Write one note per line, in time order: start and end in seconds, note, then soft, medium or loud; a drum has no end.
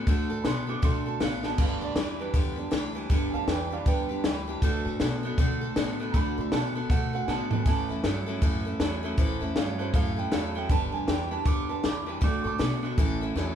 0.07 0.26 D2 medium
0.07 0.31 D3 medium
0.07 0.43 D3 medium
0.07 0.31 A3 medium
0.07 0.43 A3 medium
0.07 0.31 D4 loud
0.07 0.30 F#4 medium
0.07 0.29 A4 medium
0.07 kick loud
0.07 open hi-hat soft
0.30 0.43 A2 medium
0.30 0.45 D4 medium
0.30 0.46 F#4 medium
0.30 0.45 A4 medium
0.42 0.77 B2 loud
0.42 0.66 D3 medium
0.42 0.68 A3 medium
0.42 0.66 B3 loud
0.42 0.69 D4 medium
0.42 0.45 B5 medium
0.42 snare loud
0.42 open hi-hat medium
0.47 0.68 F#4 medium
0.47 0.66 A4 medium
0.47 0.69 C6 loud
0.67 0.82 D3 medium
0.67 1.55 F#3 medium
0.67 1.55 A3 medium
0.67 0.82 B3 medium
0.67 1.56 D4 medium
0.67 0.82 D4 soft
0.67 0.83 F#4 soft
0.67 0.83 A4 medium
0.67 0.84 D6 medium
0.82 1.15 B2 medium
0.82 1.06 D3 medium
0.82 1.18 D3 medium
0.82 1.06 A3 medium
0.82 1.19 A3 medium
0.82 1.07 D4 medium
0.82 1.06 F#4 medium
0.82 1.05 A4 medium
0.82 1.06 C6 medium
0.82 kick loud
0.82 open hi-hat medium
1.06 1.20 D4 soft
1.06 1.21 F#4 soft
1.06 1.21 A4 medium
1.06 1.21 A5 medium
1.20 1.52 A1 medium
1.20 1.42 D3 medium
1.20 1.44 A3 medium
1.20 1.42 B3 loud
1.20 1.45 D4 medium
1.20 1.43 F#4 medium
1.20 1.42 A4 medium
1.20 1.45 F5 medium
1.20 snare loud
1.20 open hi-hat medium
1.43 1.58 D3 medium
1.43 1.58 B3 medium
1.43 1.58 D4 soft
1.43 1.59 F#4 soft
1.43 1.59 A4 medium
1.43 1.59 A5 medium
1.43 snare medium
1.58 1.78 G1 medium
1.58 1.94 G2 medium
1.58 1.94 D3 loud
1.58 1.82 G3 medium
1.58 1.87 G3 medium
1.58 1.87 B3 medium
1.58 1.82 D4 medium
1.58 1.87 D4 medium
1.58 1.81 G4 medium
1.58 1.80 B4 medium
1.58 1.83 F5 medium
1.58 kick loud
1.58 open hi-hat medium
1.58 crash medium
1.81 1.94 D2 medium
1.81 1.96 D4 soft
1.81 1.97 G4 soft
1.81 1.97 B4 medium
1.81 1.97 D5 medium
1.95 2.28 E2 medium
1.95 2.18 G2 medium
1.95 2.18 E3 loud
1.95 2.20 G3 medium
1.95 2.20 D4 medium
1.95 2.20 G4 medium
1.95 2.18 B4 medium
1.95 2.20 D5 medium
1.95 snare loud
1.95 open hi-hat medium
2.19 2.34 G2 medium
2.19 2.34 E3 medium
2.19 2.33 D4 soft
2.19 2.34 G4 soft
2.19 2.35 B4 medium
2.19 2.57 B4 medium
2.34 2.66 E2 loud
2.34 2.70 G2 medium
2.34 2.71 D3 loud
2.34 2.58 G3 medium
2.34 2.57 D4 medium
2.34 2.56 G4 medium
2.34 2.55 B4 medium
2.34 kick loud
2.34 open hi-hat medium
2.56 2.71 G3 medium
2.56 2.71 B3 soft
2.56 2.71 D4 medium
2.56 2.71 D4 soft
2.56 2.72 G4 medium
2.56 2.72 B4 medium
2.71 3.04 D2 medium
2.71 2.94 G2 medium
2.71 2.94 E3 medium
2.71 2.95 G3 medium
2.71 2.96 D4 medium
2.71 2.95 G4 medium
2.71 2.94 B4 medium
2.71 snare loud
2.71 open hi-hat medium
2.95 3.09 G2 medium
2.95 3.09 E3 medium
2.95 3.09 D4 medium
2.95 3.10 G4 medium
2.95 3.10 B4 medium
3.10 3.29 G1 medium
3.10 3.46 G2 medium
3.10 3.46 D3 loud
3.10 3.33 G3 medium
3.10 4.08 G3 medium
3.10 4.08 B3 medium
3.10 3.34 D4 medium
3.10 4.09 D4 medium
3.10 3.34 G4 medium
3.10 3.32 B4 medium
3.10 kick loud
3.10 open hi-hat soft
3.30 3.46 D2 medium
3.30 3.32 G#5 medium
3.34 3.47 D4 medium
3.34 3.48 G4 medium
3.34 3.49 B4 medium
3.34 3.48 F5 medium
3.34 3.49 A5 loud
3.47 3.80 E2 medium
3.47 3.70 G2 medium
3.47 3.70 E3 medium
3.47 3.71 G3 medium
3.47 3.72 D4 medium
3.47 3.71 G4 medium
3.47 3.70 B4 medium
3.47 3.69 B4 medium
3.47 3.72 G5 loud
3.47 snare loud
3.47 open hi-hat medium
3.70 3.86 G2 medium
3.70 3.86 E3 medium
3.70 3.86 D4 soft
3.70 3.86 G4 soft
3.70 3.86 B4 medium
3.70 3.86 D5 medium
3.70 3.87 F5 medium
3.86 4.18 E2 medium
3.86 4.22 G2 medium
3.86 4.22 D3 loud
3.86 4.10 G3 medium
3.86 4.10 D4 medium
3.86 4.09 G4 medium
3.86 4.97 B4 medium
3.86 4.08 B4 medium
3.86 4.61 G5 loud
3.86 kick loud
3.86 open hi-hat medium
4.09 4.23 G3 soft
4.09 4.23 B3 soft
4.09 4.23 D4 medium
4.09 4.24 D4 soft
4.09 4.25 G4 medium
4.09 4.24 B4 medium
4.24 4.56 D2 medium
4.24 4.46 G2 medium
4.24 4.46 E3 loud
4.24 4.48 G3 medium
4.24 4.48 D4 medium
4.24 4.47 G4 medium
4.24 4.46 B4 medium
4.24 snare loud
4.24 open hi-hat medium
4.47 4.61 G2 medium
4.47 4.62 E3 medium
4.47 4.62 D4 soft
4.47 4.63 G4 medium
4.47 4.62 B4 medium
4.62 4.82 D2 medium
4.62 4.86 D3 medium
4.62 4.98 D3 medium
4.62 5.21 F#3 medium
4.62 4.86 A3 loud
4.62 5.21 A3 medium
4.62 4.98 A3 loud
4.62 4.86 D4 loud
4.62 5.21 D4 medium
4.62 4.86 F#4 medium
4.62 4.84 A4 loud
4.62 kick loud
4.62 open hi-hat medium
4.85 4.98 A2 medium
4.85 5.00 D4 soft
4.85 5.01 F#4 medium
4.85 5.00 A4 medium
5.00 5.32 B2 medium
5.00 5.22 D3 medium
5.00 5.23 A3 medium
5.00 5.22 B3 medium
5.00 5.24 D4 medium
5.00 5.23 F#4 medium
5.00 5.22 A4 medium
5.00 snare loud
5.00 open hi-hat medium
5.23 5.38 D3 medium
5.23 5.37 F#3 soft
5.23 5.37 A3 soft
5.23 5.38 B3 medium
5.23 5.38 D4 medium
5.23 5.38 D4 soft
5.23 5.38 F#4 medium
5.23 5.38 A4 medium
5.38 5.70 B2 medium
5.38 5.61 D3 medium
5.38 5.74 D3 medium
5.38 5.62 A3 medium
5.38 5.74 A3 medium
5.38 5.62 D4 medium
5.38 5.61 F#4 medium
5.38 5.60 A4 loud
5.38 kick loud
5.38 open hi-hat medium
5.61 5.77 D4 medium
5.61 5.77 F#4 medium
5.61 5.76 A4 medium
5.76 6.08 A2 medium
5.76 5.97 D3 medium
5.76 6.00 A3 medium
5.76 5.98 B3 loud
5.76 6.00 D4 medium
5.76 6.00 F#4 medium
5.76 5.98 A4 medium
5.76 snare loud
5.76 open hi-hat medium
6.00 6.13 D3 medium
6.00 6.13 B3 medium
6.00 6.14 D4 soft
6.00 6.15 F#4 medium
6.00 6.14 A4 medium
6.12 6.33 D2 medium
6.12 6.37 D3 medium
6.12 6.49 D3 loud
6.12 6.72 F#3 medium
6.12 6.49 A3 loud
6.12 6.38 A3 medium
6.12 6.73 A3 medium
6.12 6.73 D4 medium
6.12 6.38 D4 medium
6.12 6.14 A#5 medium
6.12 kick loud
6.12 open hi-hat medium
6.16 6.38 F#4 medium
6.16 6.36 A4 medium
6.16 6.37 B5 loud
6.38 6.50 A2 medium
6.38 6.52 D4 soft
6.38 6.53 F#4 soft
6.38 6.52 A4 medium
6.38 6.53 B5 medium
6.52 6.84 B2 medium
6.52 6.73 D3 medium
6.52 6.75 A3 medium
6.52 6.73 B3 loud
6.52 6.76 D4 medium
6.52 6.76 F#4 medium
6.52 6.74 A4 medium
6.52 6.89 A5 loud
6.52 snare loud
6.52 open hi-hat medium
6.75 6.89 D3 medium
6.75 6.89 B3 medium
6.75 6.90 D4 soft
6.75 6.91 F#4 soft
6.75 6.90 A4 medium
6.89 7.21 B2 medium
6.89 7.25 D3 medium
6.89 7.13 D3 medium
6.89 7.14 A3 medium
6.89 7.26 A3 loud
6.89 7.14 D4 medium
6.89 7.13 F#4 medium
6.89 7.12 A4 medium
6.89 7.13 F#5 medium
6.89 kick loud
6.89 open hi-hat medium
7.13 7.28 D4 soft
7.13 7.29 F#4 soft
7.13 7.28 A4 medium
7.13 7.29 F#5 loud
7.25 7.60 A2 medium
7.25 7.49 D3 medium
7.25 7.51 A3 medium
7.25 7.49 B3 loud
7.25 7.28 G#5 medium
7.25 snare medium
7.29 7.52 D4 medium
7.29 7.52 F#4 medium
7.29 7.50 A4 medium
7.29 7.65 A5 loud
7.51 7.65 D3 medium
7.51 7.65 B3 medium
7.51 7.67 D4 soft
7.51 7.67 F#4 medium
7.51 7.66 A4 medium
7.51 floor tom medium
7.63 7.85 A1 loud
7.63 7.89 A2 medium
7.63 7.94 E3 medium
7.63 7.89 E3 medium
7.63 7.90 A3 medium
7.63 7.66 G#5 medium
7.63 kick loud
7.63 open hi-hat medium
7.67 8.02 A2 medium
7.67 8.02 E3 loud
7.67 7.94 A3 medium
7.67 7.94 C#4 medium
7.67 7.90 C#4 medium
7.67 7.89 E4 medium
7.67 7.88 A4 medium
7.67 8.77 A5 loud
7.89 8.02 E2 medium
7.89 8.03 A3 soft
7.89 8.04 C#4 soft
7.89 8.04 E4 medium
7.89 8.04 A4 medium
8.04 8.36 G2 medium
8.04 8.25 A2 medium
8.04 8.25 F#3 medium
8.04 8.27 A3 medium
8.04 8.28 C#4 medium
8.04 8.26 E4 medium
8.04 8.25 A4 medium
8.04 snare loud
8.04 open hi-hat medium
8.26 8.41 A2 medium
8.26 8.41 F#3 medium
8.26 8.41 A3 medium
8.26 8.42 C#4 medium
8.26 8.42 E4 medium
8.26 8.42 A4 medium
8.41 8.74 F#2 loud
8.41 8.65 A2 medium
8.41 8.77 A2 medium
8.41 8.65 E3 medium
8.41 8.77 E3 loud
8.41 8.65 A3 medium
8.41 8.66 C#4 medium
8.41 8.65 E4 loud
8.41 8.64 A4 loud
8.41 kick loud
8.41 open hi-hat medium
8.65 8.79 A3 medium
8.65 8.80 C#4 medium
8.65 8.81 E4 medium
8.65 8.80 A4 medium
8.80 9.12 E2 medium
8.80 9.01 A2 medium
8.80 9.01 F#3 loud
8.80 9.03 A3 medium
8.80 9.04 C#4 medium
8.80 9.03 E4 medium
8.80 9.02 A4 medium
8.80 snare loud
8.80 open hi-hat medium
9.03 9.17 A2 medium
9.03 9.17 F#3 medium
9.03 9.18 A3 medium
9.03 9.18 C#4 medium
9.03 9.18 E4 medium
9.03 9.18 A4 medium
9.17 9.37 A1 medium
9.17 9.41 A2 medium
9.17 9.53 A2 medium
9.17 10.66 E3 medium
9.17 9.53 E3 loud
9.17 9.41 E3 medium
9.17 10.66 A3 medium
9.17 9.42 A3 medium
9.17 10.66 C#4 medium
9.17 9.41 C#4 medium
9.17 9.40 E4 medium
9.17 9.40 A4 medium
9.17 9.55 C5 medium
9.17 kick loud
9.17 open hi-hat medium
9.41 9.53 E2 medium
9.41 9.55 A3 soft
9.41 9.56 C#4 medium
9.41 9.56 E4 medium
9.41 9.56 A4 medium
9.56 9.88 G2 medium
9.56 9.77 A2 medium
9.56 9.77 F#3 loud
9.56 9.79 A3 medium
9.56 9.80 C#4 medium
9.56 9.79 E4 medium
9.56 9.78 A4 medium
9.56 9.79 F5 loud
9.56 snare loud
9.56 open hi-hat medium
9.78 9.92 A2 medium
9.78 9.92 F#3 medium
9.78 9.94 A3 soft
9.78 9.94 C#4 soft
9.78 9.95 E4 medium
9.78 9.94 A4 medium
9.78 9.94 C5 medium
9.93 10.26 F#2 medium
9.93 10.29 A2 medium
9.93 10.17 A2 medium
9.93 10.29 E3 medium
9.93 10.18 E3 medium
9.93 10.18 A3 medium
9.93 10.18 C#4 medium
9.93 10.17 E4 medium
9.93 10.15 A4 medium
9.93 10.17 F5 loud
9.93 kick loud
9.93 open hi-hat soft
10.17 10.30 A3 soft
10.17 10.31 C#4 medium
10.17 10.32 E4 medium
10.17 10.32 A4 medium
10.17 10.32 G5 loud
10.31 10.64 E2 medium
10.31 10.53 A2 medium
10.31 10.53 F#3 medium
10.31 10.55 A3 medium
10.31 10.56 C#4 medium
10.31 10.55 E4 medium
10.31 10.54 A4 medium
10.31 10.55 F5 medium
10.31 snare loud
10.31 open hi-hat medium
10.55 10.69 A2 medium
10.55 10.69 F#3 medium
10.55 10.69 A3 soft
10.55 10.70 C#4 soft
10.55 10.71 E4 medium
10.55 10.70 A4 medium
10.55 10.71 G5 medium
10.69 10.89 G1 loud
10.69 11.05 G2 medium
10.69 11.05 D3 loud
10.69 11.67 G3 medium
10.69 10.93 G3 medium
10.69 11.67 B3 medium
10.69 11.68 D4 medium
10.69 10.93 D4 medium
10.69 10.93 G4 medium
10.69 10.91 B4 loud
10.69 10.93 A5 loud
10.69 kick loud
10.69 open hi-hat medium
10.92 11.06 D2 medium
10.92 11.07 D4 soft
10.92 11.09 G4 medium
10.92 11.08 B4 medium
10.92 11.08 G#5 medium
11.07 11.40 E2 medium
11.07 11.29 G2 medium
11.07 11.29 E3 loud
11.07 11.31 G3 medium
11.07 11.31 D4 medium
11.07 11.31 G4 medium
11.07 11.30 B4 medium
11.07 11.31 G5 loud
11.07 snare loud
11.07 open hi-hat medium
11.31 11.44 G2 medium
11.31 11.45 E3 medium
11.31 11.45 D4 soft
11.31 11.46 G4 soft
11.31 11.46 B4 medium
11.31 11.46 A5 loud
11.45 11.78 E2 medium
11.45 11.81 G2 medium
11.45 11.81 D3 loud
11.45 11.69 G3 medium
11.45 11.69 D4 medium
11.45 11.70 G4 medium
11.45 11.68 B4 medium
11.45 11.69 D6 loud
11.45 kick loud
11.45 open hi-hat medium
11.69 11.82 G3 medium
11.69 11.82 B3 soft
11.69 11.83 D4 medium
11.69 11.84 D4 soft
11.69 11.84 G4 soft
11.69 11.84 B4 medium
11.69 11.84 A5 medium
11.83 12.16 E2 loud
11.83 12.05 G2 medium
11.83 12.05 E3 medium
11.83 12.07 G3 medium
11.83 12.08 D4 medium
11.83 12.07 G4 medium
11.83 12.05 B4 medium
11.83 12.07 D6 medium
11.83 snare loud
11.83 open hi-hat medium
12.06 12.21 G2 medium
12.06 12.21 E3 medium
12.06 12.21 D4 medium
12.06 12.22 G4 soft
12.06 12.22 B4 medium
12.21 12.41 D2 medium
12.21 12.45 D3 medium
12.21 12.57 D3 medium
12.21 12.94 F#3 medium
12.21 12.45 A3 medium
12.21 12.95 A3 medium
12.21 12.58 A3 loud
12.21 12.45 D4 medium
12.21 12.95 D4 medium
12.21 12.45 F#4 medium
12.21 12.43 A4 medium
12.21 12.45 D6 medium
12.21 kick loud
12.21 open hi-hat medium
12.43 12.57 A2 medium
12.43 12.59 F#4 medium
12.43 12.60 A4 medium
12.43 12.45 C#6 medium
12.47 12.59 D4 soft
12.47 12.83 D6 loud
12.58 12.92 B2 medium
12.58 12.81 D3 medium
12.58 12.83 A3 medium
12.58 12.81 B3 medium
12.58 12.83 D4 medium
12.58 12.83 F#4 medium
12.58 12.81 A4 medium
12.58 snare loud
12.58 open hi-hat medium
12.83 12.97 D3 medium
12.83 12.97 B3 medium
12.83 12.98 D4 soft
12.83 12.99 F#4 medium
12.83 12.98 A4 medium
12.97 13.30 A1 loud
12.97 13.21 A2 medium
12.97 13.33 A2 medium
12.97 13.33 E3 loud
12.97 13.55 E3 medium
12.97 13.22 E3 medium
12.97 13.55 A3 medium
12.97 13.22 A3 medium
12.97 13.55 C#4 medium
12.97 13.22 C#4 medium
12.97 13.21 E4 loud
12.97 13.20 A4 medium
12.97 kick loud
12.97 open hi-hat medium
13.21 13.34 A3 medium
13.21 13.36 C#4 medium
13.21 13.37 E4 medium
13.21 13.36 A4 medium
13.35 13.55 E2 loud
13.35 13.55 A2 medium
13.35 13.55 F#3 loud
13.35 13.55 A3 medium
13.35 13.55 C#4 medium
13.35 13.55 E4 medium
13.35 13.55 A4 medium
13.35 snare medium